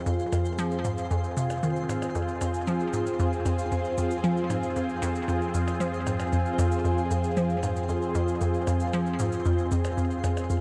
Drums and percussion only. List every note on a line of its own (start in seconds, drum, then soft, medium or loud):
0.06 shaker medium
0.19 shaker soft
0.32 percussion blips medium
0.32 shaker medium
0.45 shaker medium
0.58 shaker medium
0.71 shaker soft
0.85 shaker medium
0.98 shaker soft
1.11 shaker medium
1.24 shaker soft
1.37 shaker medium
1.50 percussion blips medium
1.50 shaker medium
1.63 shaker medium
1.76 shaker soft
1.89 percussion blips medium
1.89 shaker medium
2.02 percussion blips medium
2.02 shaker medium
2.15 shaker soft
2.28 shaker soft
2.41 percussion blips medium
2.41 shaker medium
2.54 shaker medium
2.67 shaker soft
2.80 shaker soft
2.93 shaker medium
3.06 shaker soft
3.20 shaker soft
3.33 shaker soft
3.46 percussion blips soft
3.46 shaker medium
3.59 shaker soft
3.72 shaker medium
3.85 shaker soft
3.98 shaker medium
4.11 shaker medium
4.24 shaker soft
4.37 shaker soft
4.50 percussion blips medium
4.50 shaker medium
4.63 shaker soft
4.76 shaker soft
4.89 shaker soft
5.02 shaker medium
5.15 shaker soft
5.29 shaker soft
5.42 shaker soft
5.54 shaker medium
5.68 percussion blips medium
5.68 shaker medium
5.81 shaker medium
5.94 shaker soft
6.07 percussion blips medium
6.07 shaker medium
6.20 percussion blips medium
6.20 shaker soft
6.33 shaker soft
6.46 shaker soft
6.59 percussion blips medium
6.59 shaker medium
6.72 shaker soft
6.85 shaker soft
6.98 shaker soft
7.11 shaker medium
7.24 shaker soft
7.37 shaker soft
7.50 shaker soft
7.63 percussion blips soft
7.63 shaker medium
7.76 shaker soft
7.89 shaker medium
8.02 shaker soft
8.15 shaker medium
8.28 shaker soft
8.41 shaker medium
8.54 shaker soft
8.67 percussion blips medium
8.67 shaker medium
8.80 shaker soft
8.93 shaker soft
9.06 shaker soft
9.19 shaker medium
9.32 shaker soft
9.45 shaker soft
9.58 shaker soft
9.71 shaker medium
9.85 percussion blips medium
9.85 shaker soft
9.98 shaker soft
10.11 shaker soft
10.24 percussion blips medium
10.24 shaker medium
10.37 percussion blips medium
10.37 shaker soft
10.50 shaker soft